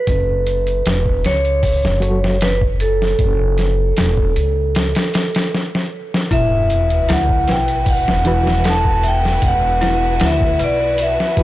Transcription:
0.00 1.22 B4 medium
0.07 0.82 F#1 medium
0.07 kick loud
0.07 closed hi-hat medium
0.47 closed hi-hat medium
0.67 closed hi-hat soft
0.86 1.21 E1 loud
0.86 snare loud
0.86 closed hi-hat medium
1.06 kick medium
1.24 1.86 C#2 medium
1.24 2.45 C#5 loud
1.24 snare medium
1.24 closed hi-hat medium
1.45 closed hi-hat soft
1.63 kick loud
1.63 open hi-hat medium
1.85 3.16 F#1 loud
1.85 snare medium
2.00 2.36 F#3 medium
2.00 2.37 F#4 medium
2.00 2.37 A4 medium
2.00 2.38 C#5 medium
2.00 closed hi-hat medium
2.24 snare medium
2.41 2.60 B4 medium
2.41 snare loud
2.41 closed hi-hat medium
2.61 kick medium
2.80 5.49 A4 medium
2.80 closed hi-hat medium
3.02 snare soft
3.19 3.94 F#1 medium
3.19 kick loud
3.19 closed hi-hat medium
3.58 snare soft
3.58 closed hi-hat medium
3.97 4.32 E1 loud
3.97 snare loud
3.97 closed hi-hat medium
4.17 kick medium
4.36 4.92 C#2 medium
4.36 closed hi-hat medium
4.75 snare loud
4.75 closed hi-hat medium
4.95 snare loud
4.95 closed hi-hat medium
5.14 snare loud
5.14 closed hi-hat medium
5.35 snare loud
5.35 closed hi-hat medium
5.54 snare medium
5.75 snare medium
6.14 snare medium
6.31 7.05 E1 medium
6.31 11.43 B3 medium
6.31 6.68 E4 medium
6.31 11.43 E4 medium
6.31 11.43 F#4 medium
6.31 11.43 B4 medium
6.31 7.12 E5 loud
6.31 kick loud
6.31 closed hi-hat medium
6.31 sub drop medium
6.70 closed hi-hat medium
6.90 closed hi-hat soft
7.09 7.44 D2 loud
7.09 7.44 E4 loud
7.09 7.51 F#5 loud
7.09 snare loud
7.09 closed hi-hat medium
7.29 kick medium
7.48 8.10 B1 medium
7.48 8.22 B4 medium
7.48 7.89 G5 medium
7.48 snare medium
7.48 closed hi-hat medium
7.68 closed hi-hat soft
7.86 8.68 F#5 medium
7.86 kick loud
7.86 open hi-hat medium
8.08 9.40 E1 loud
8.08 snare medium
8.25 8.60 E3 medium
8.25 8.61 E4 medium
8.25 8.61 F#4 medium
8.25 8.62 B4 medium
8.25 closed hi-hat medium
8.47 snare medium
8.64 9.02 A4 medium
8.64 snare loud
8.64 closed hi-hat medium
8.69 9.07 A5 loud
8.85 kick medium
9.03 9.41 E5 medium
9.03 closed hi-hat medium
9.08 9.46 G5 medium
9.25 snare soft
9.42 10.17 E1 loud
9.42 kick loud
9.42 closed hi-hat medium
9.47 10.25 F#5 loud
9.81 10.17 E4 loud
9.81 snare soft
9.81 closed hi-hat medium
10.20 10.55 D2 loud
10.20 10.56 E4 loud
10.20 snare loud
10.20 closed hi-hat medium
10.25 10.59 E5 medium
10.41 kick medium
10.59 11.15 B1 medium
10.59 11.43 B4 medium
10.59 closed hi-hat medium
10.64 11.02 D5 medium
10.98 11.43 E5 medium
10.98 closed hi-hat medium
11.20 snare soft
11.36 11.43 E3 medium
11.36 11.43 E4 medium
11.36 11.43 F#4 medium
11.36 11.43 B4 medium
11.36 kick loud
11.36 closed hi-hat medium

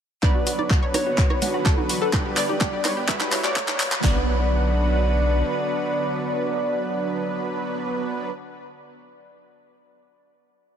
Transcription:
0.23 0.54 B1 loud
0.23 3.06 D3 medium
0.23 2.09 F#3 medium
0.23 2.09 B3 medium
0.23 3.06 B3 medium
0.23 2.09 D4 medium
0.23 2.12 F#4 medium
0.23 2.09 B4 loud
0.23 4.00 B4 medium
0.23 0.85 D5 loud
0.23 0.30 D5 loud
0.23 0.85 D5 loud
0.23 kick loud
0.23 clap soft
0.23 riser medium
0.23 high conga medium
0.35 0.42 F#4 medium
0.47 0.54 F#4 medium
0.47 open hi-hat loud
0.59 0.89 B1 medium
0.59 0.66 D5 medium
0.59 high conga medium
0.70 0.78 F#4 medium
0.70 kick loud
0.70 clap medium
0.83 0.90 C#5 medium
0.94 1.02 F#4 medium
0.94 1.56 C#5 loud
0.94 1.56 C#5 medium
0.94 cross-stick medium
0.94 open hi-hat loud
0.94 high conga medium
1.06 1.37 F#1 medium
1.06 1.13 F#4 medium
1.18 1.25 F#4 medium
1.18 kick loud
1.18 clap medium
1.30 1.37 C#5 medium
1.30 cross-stick medium
1.30 high conga medium
1.42 1.73 B1 loud
1.42 1.49 F#4 medium
1.42 open hi-hat loud
1.42 low conga medium
1.54 1.61 F#4 medium
1.66 1.73 A4 loud
1.66 kick loud
1.66 clap medium
1.78 1.86 B1 medium
1.78 1.85 F#4 medium
1.78 high conga medium
1.89 1.97 F#4 medium
1.89 open hi-hat loud
2.02 2.09 A4 medium
2.13 2.44 G1 loud
2.13 3.04 G3 medium
2.13 3.04 B3 medium
2.13 3.04 D4 medium
2.13 3.08 G4 medium
2.13 2.21 G4 medium
2.13 3.04 B4 medium
2.13 kick loud
2.13 clap medium
2.13 high conga medium
2.25 2.32 G4 medium
2.37 3.23 D5 loud
2.37 2.44 D5 medium
2.37 clap medium
2.37 open hi-hat loud
2.49 2.80 G1 loud
2.49 2.56 G4 medium
2.49 high conga medium
2.61 2.68 G4 medium
2.61 kick loud
2.61 clap medium
2.73 2.80 G4 medium
2.85 2.92 C#5 medium
2.85 cross-stick medium
2.85 clap medium
2.85 open hi-hat loud
2.85 high conga medium
2.97 3.27 E1 medium
2.97 3.04 G4 medium
3.08 4.03 E3 medium
3.08 4.03 G3 medium
3.08 3.99 G3 medium
3.08 3.99 E4 medium
3.08 4.03 F#4 medium
3.08 3.99 F#4 medium
3.08 3.99 B4 medium
3.08 3.16 E5 loud
3.08 kick loud
3.08 clap medium
3.21 3.28 E4 medium
3.21 clap medium
3.21 high conga medium
3.32 3.63 E1 loud
3.32 3.40 E4 medium
3.32 3.94 C#5 medium
3.32 3.94 C#5 loud
3.32 clap loud
3.32 open hi-hat loud
3.44 3.94 D5 loud
3.44 clap medium
3.56 kick loud
3.56 clap loud
3.68 3.77 E1 medium
3.68 clap medium
3.68 high conga loud
3.80 clap loud
3.80 open hi-hat loud
3.92 clap loud
4.04 5.43 B1 loud
4.04 8.30 D3 medium
4.04 8.30 F#3 medium
4.04 8.30 B3 medium
4.04 8.30 D4 medium
4.04 8.30 F#4 medium
4.04 8.30 B4 medium
4.04 8.30 D5 loud
4.04 8.30 D5 medium
4.04 kick loud
4.04 snare loud
4.04 clap medium

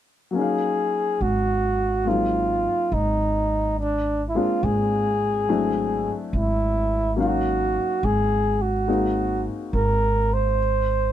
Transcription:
0.31 2.04 F#3 soft
0.31 2.05 A#3 soft
0.35 2.07 C#4 soft
0.35 2.07 D#4 soft
0.35 1.23 G#4 medium
0.42 2.10 F5 soft
1.21 2.66 G#1 soft
1.21 2.09 F#4 medium
2.05 3.77 G#3 soft
2.05 3.78 A#3 soft
2.05 3.78 C4 soft
2.05 3.79 D#4 soft
2.05 2.95 F4 medium
2.10 3.79 F#3 soft
2.92 4.37 G#1 medium
2.92 3.78 D#4 medium
3.80 4.23 D4 medium
4.29 4.38 E4 soft
4.35 5.48 G#3 soft
4.35 5.48 A#3 soft
4.35 5.47 C4 soft
4.35 5.48 D4 soft
4.35 5.49 F4 soft
4.35 4.66 F4 medium
4.63 6.07 G#1 medium
4.63 6.16 G#4 medium
5.48 7.14 F#3 soft
5.48 7.18 A3 soft
5.48 7.18 C4 soft
5.48 7.19 D4 soft
5.48 7.19 E4 soft
6.33 7.77 G#1 medium
6.33 7.15 E4 soft
7.16 8.87 F#3 soft
7.16 8.86 A#3 soft
7.16 8.88 C#4 soft
7.16 8.87 D#4 soft
7.20 8.07 F#4 medium
7.20 8.89 F5 soft
8.03 9.47 G#1 medium
8.03 8.63 G#4 medium
8.62 9.46 F#4 medium
8.88 10.58 G#3 soft
8.88 10.58 A#3 soft
8.88 10.58 C4 soft
8.88 10.58 D#4 soft
8.88 10.58 F#4 soft
9.73 11.12 G#1 soft
9.73 10.35 A#4 medium
10.34 11.12 C5 medium

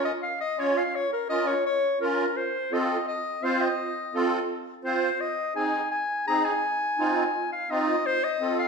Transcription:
0.00 0.11 C#4 medium
0.00 0.11 F4 medium
0.00 0.12 A#4 medium
0.05 0.13 D#5 medium
0.23 0.39 F5 medium
0.41 0.61 D#5 loud
0.57 0.82 C#4 medium
0.57 0.83 F4 medium
0.57 0.83 C#5 medium
0.57 0.79 C#5 medium
0.77 0.97 F5 medium
0.95 1.12 C#5 loud
1.13 1.29 A#4 medium
1.29 1.54 C#4 medium
1.29 1.54 F4 medium
1.29 1.54 A#4 medium
1.29 1.48 D#5 loud
1.47 1.65 C#5 medium
1.66 1.98 C#5 medium
2.00 2.25 C#4 medium
2.00 2.25 F4 medium
2.00 2.38 A#4 medium
2.00 2.26 A#4 medium
2.37 2.75 C5 loud
2.72 2.97 C4 medium
2.72 2.97 F4 medium
2.72 2.97 A4 medium
2.72 3.07 D#5 medium
3.08 3.45 D#5 medium
3.43 3.68 C4 medium
3.43 3.68 F4 medium
3.43 3.68 C5 medium
3.43 3.63 F5 medium
3.61 4.41 D#5 medium
4.14 4.39 C4 medium
4.14 4.39 F4 medium
4.14 4.39 A4 medium
4.84 5.10 C4 medium
4.84 5.10 F4 medium
4.84 5.10 C5 medium
4.84 5.22 C5 medium
5.21 5.55 D#5 loud
5.55 5.81 C4 medium
5.55 5.81 D#4 medium
5.55 5.81 G#4 medium
5.55 5.89 G#5 medium
5.92 6.25 G#5 medium
6.27 6.52 C4 medium
6.27 6.53 D#4 medium
6.27 6.53 G#4 medium
6.27 6.46 A#5 loud
6.45 7.52 G#5 medium
6.98 7.24 C4 medium
6.98 7.24 D#4 medium
6.98 7.24 F4 medium
7.52 7.72 F5 medium
7.70 7.95 C4 medium
7.70 7.95 D#4 medium
7.70 7.96 F4 medium
7.70 8.08 D#5 loud
8.06 8.26 C5 loud
8.24 8.58 D#5 loud
8.40 8.66 C4 medium
8.40 8.66 F4 medium
8.40 8.66 A4 medium
8.59 8.68 F5 medium

